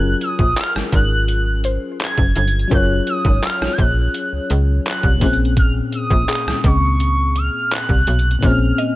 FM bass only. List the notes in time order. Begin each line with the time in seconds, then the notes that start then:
Already playing: F#1
0.39 A#1
0.75 G#1
0.93 G#1
2.18 F#1
2.36 G1
2.71 F#1
3.25 G#1
3.61 A#1
3.79 A#1
4.33 C#2
4.50 C#2
5.04 C2
5.22 A#1
6.11 A#1
6.47 C#2
6.64 C#2
7.89 C2
8.07 B1
8.43 A#1